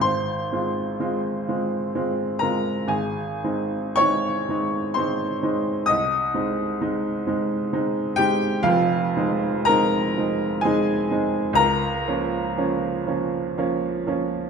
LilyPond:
\new Staff \with { instrumentName = "Upright piano" } { \time 3/4 \key aes \major \tempo 4 = 63 << { <c'' c'''>2 r8 <bes' bes''>8 | <aes' aes''>4 <des'' des'''>4 <c'' c'''>4 | <ees'' ees'''>2 r8 <g' g''>8 | \key f \minor <f' f''>4 <bes' bes''>4 <aes' aes''>4 |
<bes' bes''>2 r4 | } \\ { aes,,8 <aes c' f'>8 <aes c' f'>8 <aes c' f'>8 <aes c' f'>8 <aes c' f'>8 | aes,,8 <aes c' ees'>8 <aes c' ees'>8 <aes c' ees'>8 <aes c' ees'>8 <aes c' ees'>8 | c,8 <aes c' ees'>8 <aes c' ees'>8 <aes c' ees'>8 <aes c' ees'>8 <aes c' ees'>8 | <f,, f,>8 <aes c' ees'>8 <aes c' ees'>8 <aes c' ees'>8 <aes c' ees'>8 <aes c' ees'>8 |
des,8 <f bes des'>8 <f bes des'>8 <f bes des'>8 <f bes des'>8 <f bes des'>8 | } >> }